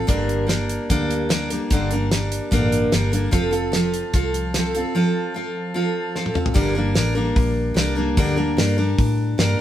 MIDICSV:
0, 0, Header, 1, 4, 480
1, 0, Start_track
1, 0, Key_signature, -2, "minor"
1, 0, Tempo, 404313
1, 103, Time_signature, 4, 2, 24, 8
1, 11408, End_track
2, 0, Start_track
2, 0, Title_t, "Steel-string acoustic guitar"
2, 0, Program_c, 0, 25
2, 82, Note_on_c, 0, 43, 74
2, 88, Note_on_c, 0, 50, 74
2, 93, Note_on_c, 0, 55, 81
2, 99, Note_on_c, 0, 58, 76
2, 105, Note_on_c, 0, 70, 87
2, 109, Note_on_c, 0, 62, 84
2, 538, Note_off_c, 0, 55, 0
2, 553, Note_on_c, 0, 55, 56
2, 554, Note_off_c, 0, 58, 0
2, 568, Note_on_c, 0, 58, 60
2, 569, Note_off_c, 0, 62, 0
2, 574, Note_off_c, 0, 43, 0
2, 576, Note_off_c, 0, 50, 0
2, 581, Note_off_c, 0, 70, 0
2, 583, Note_on_c, 0, 62, 65
2, 595, Note_on_c, 0, 70, 59
2, 1049, Note_off_c, 0, 55, 0
2, 1057, Note_off_c, 0, 58, 0
2, 1062, Note_on_c, 0, 43, 66
2, 1064, Note_off_c, 0, 62, 0
2, 1066, Note_on_c, 0, 50, 68
2, 1068, Note_off_c, 0, 70, 0
2, 1069, Note_on_c, 0, 55, 74
2, 1080, Note_on_c, 0, 58, 74
2, 1082, Note_on_c, 0, 62, 85
2, 1082, Note_on_c, 0, 70, 74
2, 1518, Note_off_c, 0, 55, 0
2, 1528, Note_off_c, 0, 58, 0
2, 1533, Note_on_c, 0, 55, 64
2, 1543, Note_on_c, 0, 58, 61
2, 1544, Note_off_c, 0, 43, 0
2, 1546, Note_off_c, 0, 50, 0
2, 1547, Note_off_c, 0, 62, 0
2, 1554, Note_off_c, 0, 70, 0
2, 1561, Note_on_c, 0, 62, 62
2, 1566, Note_on_c, 0, 70, 73
2, 1768, Note_off_c, 0, 70, 0
2, 1779, Note_off_c, 0, 55, 0
2, 1782, Note_off_c, 0, 62, 0
2, 1782, Note_on_c, 0, 70, 52
2, 1784, Note_off_c, 0, 58, 0
2, 1796, Note_on_c, 0, 62, 44
2, 1809, Note_on_c, 0, 58, 46
2, 1821, Note_on_c, 0, 55, 43
2, 2024, Note_off_c, 0, 70, 0
2, 2031, Note_off_c, 0, 62, 0
2, 2036, Note_off_c, 0, 55, 0
2, 2037, Note_off_c, 0, 58, 0
2, 2038, Note_on_c, 0, 43, 77
2, 2041, Note_on_c, 0, 50, 89
2, 2050, Note_on_c, 0, 55, 72
2, 2054, Note_on_c, 0, 58, 77
2, 2060, Note_on_c, 0, 62, 79
2, 2063, Note_on_c, 0, 70, 80
2, 2264, Note_off_c, 0, 70, 0
2, 2273, Note_off_c, 0, 43, 0
2, 2274, Note_off_c, 0, 50, 0
2, 2275, Note_off_c, 0, 62, 0
2, 2278, Note_off_c, 0, 55, 0
2, 2278, Note_on_c, 0, 70, 50
2, 2280, Note_off_c, 0, 58, 0
2, 2289, Note_on_c, 0, 62, 48
2, 2300, Note_on_c, 0, 58, 43
2, 2314, Note_on_c, 0, 55, 38
2, 2496, Note_off_c, 0, 55, 0
2, 2510, Note_off_c, 0, 58, 0
2, 2511, Note_on_c, 0, 55, 60
2, 2512, Note_off_c, 0, 70, 0
2, 2518, Note_off_c, 0, 62, 0
2, 2524, Note_on_c, 0, 58, 58
2, 2542, Note_on_c, 0, 62, 59
2, 2548, Note_on_c, 0, 70, 62
2, 2978, Note_on_c, 0, 43, 75
2, 2980, Note_off_c, 0, 55, 0
2, 2987, Note_off_c, 0, 58, 0
2, 2989, Note_off_c, 0, 62, 0
2, 2989, Note_on_c, 0, 50, 68
2, 2994, Note_on_c, 0, 55, 63
2, 2997, Note_off_c, 0, 70, 0
2, 3002, Note_on_c, 0, 58, 84
2, 3003, Note_on_c, 0, 62, 82
2, 3012, Note_on_c, 0, 70, 81
2, 3451, Note_off_c, 0, 55, 0
2, 3463, Note_off_c, 0, 43, 0
2, 3465, Note_on_c, 0, 55, 65
2, 3466, Note_off_c, 0, 58, 0
2, 3468, Note_off_c, 0, 50, 0
2, 3476, Note_off_c, 0, 62, 0
2, 3480, Note_off_c, 0, 70, 0
2, 3480, Note_on_c, 0, 58, 63
2, 3497, Note_on_c, 0, 62, 58
2, 3501, Note_on_c, 0, 70, 67
2, 3685, Note_off_c, 0, 70, 0
2, 3699, Note_off_c, 0, 62, 0
2, 3699, Note_on_c, 0, 70, 53
2, 3706, Note_off_c, 0, 55, 0
2, 3713, Note_on_c, 0, 62, 54
2, 3714, Note_off_c, 0, 58, 0
2, 3726, Note_on_c, 0, 58, 45
2, 3731, Note_on_c, 0, 55, 41
2, 3928, Note_off_c, 0, 55, 0
2, 3932, Note_on_c, 0, 53, 85
2, 3936, Note_off_c, 0, 58, 0
2, 3940, Note_on_c, 0, 60, 77
2, 3943, Note_off_c, 0, 62, 0
2, 3944, Note_off_c, 0, 70, 0
2, 3947, Note_on_c, 0, 65, 94
2, 3960, Note_on_c, 0, 69, 92
2, 4150, Note_off_c, 0, 69, 0
2, 4164, Note_on_c, 0, 69, 53
2, 4166, Note_off_c, 0, 65, 0
2, 4180, Note_off_c, 0, 53, 0
2, 4180, Note_on_c, 0, 65, 44
2, 4184, Note_off_c, 0, 60, 0
2, 4202, Note_on_c, 0, 60, 41
2, 4414, Note_on_c, 0, 53, 63
2, 4416, Note_off_c, 0, 69, 0
2, 4420, Note_off_c, 0, 60, 0
2, 4424, Note_off_c, 0, 65, 0
2, 4434, Note_on_c, 0, 60, 54
2, 4451, Note_on_c, 0, 65, 60
2, 4452, Note_on_c, 0, 69, 61
2, 4898, Note_off_c, 0, 53, 0
2, 4908, Note_off_c, 0, 60, 0
2, 4911, Note_off_c, 0, 65, 0
2, 4912, Note_on_c, 0, 53, 70
2, 4920, Note_off_c, 0, 69, 0
2, 4922, Note_on_c, 0, 60, 69
2, 4926, Note_on_c, 0, 65, 73
2, 4938, Note_on_c, 0, 69, 67
2, 5381, Note_off_c, 0, 53, 0
2, 5395, Note_off_c, 0, 60, 0
2, 5396, Note_on_c, 0, 53, 61
2, 5397, Note_off_c, 0, 65, 0
2, 5403, Note_off_c, 0, 69, 0
2, 5412, Note_on_c, 0, 60, 60
2, 5426, Note_on_c, 0, 65, 65
2, 5440, Note_on_c, 0, 69, 65
2, 5622, Note_off_c, 0, 69, 0
2, 5632, Note_off_c, 0, 53, 0
2, 5636, Note_on_c, 0, 69, 57
2, 5640, Note_off_c, 0, 60, 0
2, 5643, Note_off_c, 0, 65, 0
2, 5657, Note_on_c, 0, 65, 44
2, 5681, Note_on_c, 0, 60, 45
2, 5868, Note_off_c, 0, 60, 0
2, 5872, Note_off_c, 0, 69, 0
2, 5873, Note_off_c, 0, 65, 0
2, 5873, Note_on_c, 0, 53, 74
2, 5883, Note_on_c, 0, 60, 83
2, 5888, Note_on_c, 0, 65, 81
2, 5901, Note_on_c, 0, 69, 81
2, 6329, Note_off_c, 0, 53, 0
2, 6343, Note_on_c, 0, 53, 55
2, 6349, Note_off_c, 0, 60, 0
2, 6349, Note_off_c, 0, 65, 0
2, 6363, Note_on_c, 0, 60, 63
2, 6363, Note_on_c, 0, 65, 63
2, 6365, Note_off_c, 0, 69, 0
2, 6379, Note_on_c, 0, 69, 55
2, 6803, Note_off_c, 0, 53, 0
2, 6817, Note_off_c, 0, 60, 0
2, 6818, Note_on_c, 0, 53, 78
2, 6823, Note_off_c, 0, 65, 0
2, 6832, Note_off_c, 0, 69, 0
2, 6832, Note_on_c, 0, 60, 69
2, 6837, Note_on_c, 0, 65, 78
2, 6846, Note_on_c, 0, 69, 75
2, 7296, Note_off_c, 0, 53, 0
2, 7309, Note_off_c, 0, 60, 0
2, 7310, Note_on_c, 0, 53, 61
2, 7312, Note_off_c, 0, 65, 0
2, 7317, Note_off_c, 0, 69, 0
2, 7323, Note_on_c, 0, 60, 70
2, 7328, Note_on_c, 0, 65, 59
2, 7343, Note_on_c, 0, 69, 59
2, 7512, Note_off_c, 0, 69, 0
2, 7527, Note_on_c, 0, 69, 48
2, 7541, Note_off_c, 0, 65, 0
2, 7548, Note_off_c, 0, 60, 0
2, 7549, Note_off_c, 0, 53, 0
2, 7555, Note_on_c, 0, 65, 49
2, 7562, Note_on_c, 0, 60, 44
2, 7764, Note_on_c, 0, 43, 80
2, 7768, Note_on_c, 0, 50, 91
2, 7771, Note_on_c, 0, 55, 89
2, 7777, Note_off_c, 0, 69, 0
2, 7779, Note_off_c, 0, 60, 0
2, 7783, Note_on_c, 0, 58, 88
2, 7787, Note_off_c, 0, 65, 0
2, 7788, Note_on_c, 0, 70, 90
2, 7792, Note_on_c, 0, 62, 85
2, 7996, Note_off_c, 0, 70, 0
2, 8011, Note_on_c, 0, 70, 57
2, 8014, Note_off_c, 0, 62, 0
2, 8015, Note_off_c, 0, 43, 0
2, 8017, Note_off_c, 0, 50, 0
2, 8019, Note_off_c, 0, 55, 0
2, 8025, Note_off_c, 0, 58, 0
2, 8028, Note_on_c, 0, 62, 52
2, 8047, Note_on_c, 0, 58, 49
2, 8051, Note_on_c, 0, 55, 49
2, 8231, Note_off_c, 0, 55, 0
2, 8246, Note_on_c, 0, 55, 57
2, 8247, Note_off_c, 0, 58, 0
2, 8249, Note_off_c, 0, 62, 0
2, 8258, Note_off_c, 0, 70, 0
2, 8262, Note_on_c, 0, 58, 70
2, 8263, Note_on_c, 0, 62, 64
2, 8281, Note_on_c, 0, 70, 65
2, 8473, Note_off_c, 0, 70, 0
2, 8477, Note_off_c, 0, 62, 0
2, 8487, Note_on_c, 0, 70, 59
2, 8491, Note_on_c, 0, 62, 52
2, 8496, Note_off_c, 0, 55, 0
2, 8496, Note_off_c, 0, 58, 0
2, 8510, Note_on_c, 0, 58, 48
2, 8520, Note_on_c, 0, 55, 52
2, 9178, Note_off_c, 0, 55, 0
2, 9193, Note_on_c, 0, 55, 62
2, 9200, Note_off_c, 0, 58, 0
2, 9204, Note_off_c, 0, 62, 0
2, 9214, Note_on_c, 0, 58, 64
2, 9215, Note_off_c, 0, 70, 0
2, 9218, Note_on_c, 0, 62, 63
2, 9236, Note_on_c, 0, 70, 65
2, 9426, Note_off_c, 0, 70, 0
2, 9440, Note_off_c, 0, 62, 0
2, 9441, Note_on_c, 0, 70, 57
2, 9448, Note_off_c, 0, 55, 0
2, 9454, Note_off_c, 0, 58, 0
2, 9455, Note_on_c, 0, 62, 57
2, 9469, Note_on_c, 0, 58, 55
2, 9481, Note_on_c, 0, 55, 48
2, 9692, Note_off_c, 0, 70, 0
2, 9697, Note_off_c, 0, 55, 0
2, 9699, Note_off_c, 0, 62, 0
2, 9699, Note_on_c, 0, 43, 84
2, 9704, Note_off_c, 0, 58, 0
2, 9707, Note_on_c, 0, 50, 82
2, 9711, Note_on_c, 0, 55, 94
2, 9717, Note_on_c, 0, 62, 94
2, 9718, Note_on_c, 0, 58, 80
2, 9721, Note_on_c, 0, 70, 92
2, 9914, Note_off_c, 0, 70, 0
2, 9925, Note_off_c, 0, 62, 0
2, 9928, Note_on_c, 0, 70, 55
2, 9933, Note_off_c, 0, 58, 0
2, 9940, Note_on_c, 0, 62, 59
2, 9941, Note_off_c, 0, 43, 0
2, 9945, Note_off_c, 0, 50, 0
2, 9945, Note_off_c, 0, 55, 0
2, 9947, Note_on_c, 0, 58, 53
2, 9959, Note_on_c, 0, 55, 44
2, 10157, Note_off_c, 0, 55, 0
2, 10171, Note_on_c, 0, 55, 59
2, 10175, Note_off_c, 0, 58, 0
2, 10176, Note_off_c, 0, 70, 0
2, 10181, Note_off_c, 0, 62, 0
2, 10190, Note_on_c, 0, 58, 61
2, 10202, Note_on_c, 0, 62, 75
2, 10205, Note_on_c, 0, 70, 68
2, 10406, Note_off_c, 0, 70, 0
2, 10414, Note_off_c, 0, 62, 0
2, 10417, Note_off_c, 0, 55, 0
2, 10421, Note_on_c, 0, 70, 65
2, 10426, Note_off_c, 0, 58, 0
2, 10428, Note_on_c, 0, 62, 60
2, 10455, Note_on_c, 0, 55, 42
2, 11119, Note_off_c, 0, 55, 0
2, 11133, Note_on_c, 0, 55, 67
2, 11141, Note_off_c, 0, 70, 0
2, 11144, Note_off_c, 0, 62, 0
2, 11149, Note_on_c, 0, 58, 63
2, 11162, Note_on_c, 0, 62, 69
2, 11174, Note_on_c, 0, 70, 73
2, 11371, Note_off_c, 0, 70, 0
2, 11377, Note_off_c, 0, 55, 0
2, 11380, Note_off_c, 0, 62, 0
2, 11385, Note_off_c, 0, 58, 0
2, 11408, End_track
3, 0, Start_track
3, 0, Title_t, "Fingered electric bass"
3, 0, Program_c, 1, 33
3, 102, Note_on_c, 1, 31, 77
3, 916, Note_off_c, 1, 31, 0
3, 1065, Note_on_c, 1, 38, 80
3, 1877, Note_off_c, 1, 38, 0
3, 2023, Note_on_c, 1, 31, 86
3, 2836, Note_off_c, 1, 31, 0
3, 2989, Note_on_c, 1, 33, 83
3, 3397, Note_off_c, 1, 33, 0
3, 3473, Note_on_c, 1, 31, 82
3, 3879, Note_off_c, 1, 31, 0
3, 3951, Note_on_c, 1, 29, 84
3, 4761, Note_off_c, 1, 29, 0
3, 4916, Note_on_c, 1, 36, 77
3, 5724, Note_off_c, 1, 36, 0
3, 7784, Note_on_c, 1, 31, 89
3, 8248, Note_off_c, 1, 31, 0
3, 8255, Note_on_c, 1, 33, 87
3, 8725, Note_off_c, 1, 33, 0
3, 8738, Note_on_c, 1, 34, 89
3, 9199, Note_off_c, 1, 34, 0
3, 9206, Note_on_c, 1, 36, 91
3, 9680, Note_off_c, 1, 36, 0
3, 9703, Note_on_c, 1, 38, 84
3, 10168, Note_off_c, 1, 38, 0
3, 10184, Note_on_c, 1, 43, 83
3, 10648, Note_off_c, 1, 43, 0
3, 10668, Note_on_c, 1, 45, 94
3, 11130, Note_off_c, 1, 45, 0
3, 11144, Note_on_c, 1, 43, 94
3, 11366, Note_off_c, 1, 43, 0
3, 11408, End_track
4, 0, Start_track
4, 0, Title_t, "Drums"
4, 102, Note_on_c, 9, 36, 104
4, 103, Note_on_c, 9, 42, 77
4, 220, Note_off_c, 9, 36, 0
4, 222, Note_off_c, 9, 42, 0
4, 347, Note_on_c, 9, 42, 59
4, 466, Note_off_c, 9, 42, 0
4, 586, Note_on_c, 9, 38, 98
4, 586, Note_on_c, 9, 42, 80
4, 704, Note_off_c, 9, 38, 0
4, 704, Note_off_c, 9, 42, 0
4, 824, Note_on_c, 9, 42, 60
4, 943, Note_off_c, 9, 42, 0
4, 1068, Note_on_c, 9, 36, 103
4, 1069, Note_on_c, 9, 42, 84
4, 1187, Note_off_c, 9, 36, 0
4, 1188, Note_off_c, 9, 42, 0
4, 1313, Note_on_c, 9, 42, 70
4, 1432, Note_off_c, 9, 42, 0
4, 1546, Note_on_c, 9, 38, 106
4, 1546, Note_on_c, 9, 42, 72
4, 1665, Note_off_c, 9, 38, 0
4, 1665, Note_off_c, 9, 42, 0
4, 1786, Note_on_c, 9, 42, 61
4, 1905, Note_off_c, 9, 42, 0
4, 2024, Note_on_c, 9, 42, 83
4, 2028, Note_on_c, 9, 36, 111
4, 2143, Note_off_c, 9, 42, 0
4, 2146, Note_off_c, 9, 36, 0
4, 2264, Note_on_c, 9, 42, 54
4, 2383, Note_off_c, 9, 42, 0
4, 2511, Note_on_c, 9, 38, 100
4, 2511, Note_on_c, 9, 42, 76
4, 2630, Note_off_c, 9, 38, 0
4, 2630, Note_off_c, 9, 42, 0
4, 2752, Note_on_c, 9, 42, 65
4, 2871, Note_off_c, 9, 42, 0
4, 2990, Note_on_c, 9, 42, 72
4, 2991, Note_on_c, 9, 36, 92
4, 3109, Note_off_c, 9, 42, 0
4, 3110, Note_off_c, 9, 36, 0
4, 3233, Note_on_c, 9, 42, 61
4, 3352, Note_off_c, 9, 42, 0
4, 3471, Note_on_c, 9, 38, 100
4, 3471, Note_on_c, 9, 42, 70
4, 3590, Note_off_c, 9, 38, 0
4, 3590, Note_off_c, 9, 42, 0
4, 3716, Note_on_c, 9, 42, 61
4, 3835, Note_off_c, 9, 42, 0
4, 3948, Note_on_c, 9, 42, 81
4, 3951, Note_on_c, 9, 36, 108
4, 4066, Note_off_c, 9, 42, 0
4, 4069, Note_off_c, 9, 36, 0
4, 4187, Note_on_c, 9, 42, 56
4, 4306, Note_off_c, 9, 42, 0
4, 4431, Note_on_c, 9, 38, 90
4, 4431, Note_on_c, 9, 42, 70
4, 4550, Note_off_c, 9, 38, 0
4, 4550, Note_off_c, 9, 42, 0
4, 4673, Note_on_c, 9, 42, 57
4, 4792, Note_off_c, 9, 42, 0
4, 4910, Note_on_c, 9, 42, 73
4, 4913, Note_on_c, 9, 36, 100
4, 5029, Note_off_c, 9, 42, 0
4, 5032, Note_off_c, 9, 36, 0
4, 5156, Note_on_c, 9, 42, 63
4, 5274, Note_off_c, 9, 42, 0
4, 5393, Note_on_c, 9, 38, 94
4, 5393, Note_on_c, 9, 42, 83
4, 5511, Note_off_c, 9, 38, 0
4, 5511, Note_off_c, 9, 42, 0
4, 5635, Note_on_c, 9, 42, 55
4, 5754, Note_off_c, 9, 42, 0
4, 7308, Note_on_c, 9, 38, 55
4, 7427, Note_off_c, 9, 38, 0
4, 7432, Note_on_c, 9, 48, 57
4, 7543, Note_on_c, 9, 45, 80
4, 7551, Note_off_c, 9, 48, 0
4, 7662, Note_off_c, 9, 45, 0
4, 7667, Note_on_c, 9, 43, 87
4, 7782, Note_on_c, 9, 46, 54
4, 7783, Note_on_c, 9, 36, 111
4, 7786, Note_off_c, 9, 43, 0
4, 7901, Note_off_c, 9, 46, 0
4, 7902, Note_off_c, 9, 36, 0
4, 8256, Note_on_c, 9, 38, 107
4, 8256, Note_on_c, 9, 46, 48
4, 8375, Note_off_c, 9, 38, 0
4, 8375, Note_off_c, 9, 46, 0
4, 8738, Note_on_c, 9, 46, 51
4, 8741, Note_on_c, 9, 36, 104
4, 8857, Note_off_c, 9, 46, 0
4, 8859, Note_off_c, 9, 36, 0
4, 9222, Note_on_c, 9, 38, 116
4, 9222, Note_on_c, 9, 46, 48
4, 9341, Note_off_c, 9, 38, 0
4, 9341, Note_off_c, 9, 46, 0
4, 9702, Note_on_c, 9, 46, 58
4, 9703, Note_on_c, 9, 36, 117
4, 9821, Note_off_c, 9, 46, 0
4, 9822, Note_off_c, 9, 36, 0
4, 10191, Note_on_c, 9, 38, 107
4, 10191, Note_on_c, 9, 46, 57
4, 10309, Note_off_c, 9, 38, 0
4, 10309, Note_off_c, 9, 46, 0
4, 10666, Note_on_c, 9, 46, 47
4, 10667, Note_on_c, 9, 36, 111
4, 10785, Note_off_c, 9, 46, 0
4, 10786, Note_off_c, 9, 36, 0
4, 11147, Note_on_c, 9, 38, 105
4, 11147, Note_on_c, 9, 46, 46
4, 11266, Note_off_c, 9, 38, 0
4, 11266, Note_off_c, 9, 46, 0
4, 11408, End_track
0, 0, End_of_file